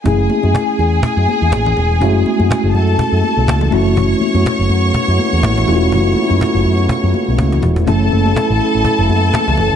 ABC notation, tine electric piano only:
X:1
M:4/4
L:1/8
Q:"Swing 16ths" 1/4=123
K:F#m
V:1 name="Tine electric piano"
[A,CEG]8 | [G,A,CEF]6- [G,A,CEF] [A,CEF]- | [A,CEF]6- [A,CEF] [A,CE^EF]- | [A,CE^EF]6- [A,C=E^EF] z |
[A,CEA]8 |]